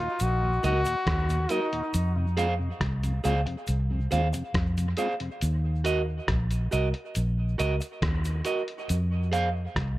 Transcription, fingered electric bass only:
0.21 A#1
0.64 C#2
1.07 D#2
1.95 F2
2.81 C2
3.25 C#2
3.69 C2
4.12 D#2
4.55 F2
5.42 D#2
6.29 A#1
6.73 C2
7.17 A#1
7.60 C#2
8.03 D#2
8.90 F2
9.76 C2

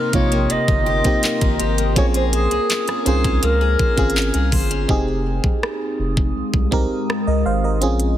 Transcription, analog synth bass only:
0.14 A#1
0.51 G1
0.68 G1
1.42 G#1
1.60 G#1
1.97 A#1
2.52 C2
3.07 C2
3.43 C#2
3.80 G#1
3.98 G#1
4.35 C2
4.53 G1
4.89 F1
5.44 F1
5.99 F1
6.36 C2
6.54 C2
7.27 C#2
7.46 G#1
7.82 A#1

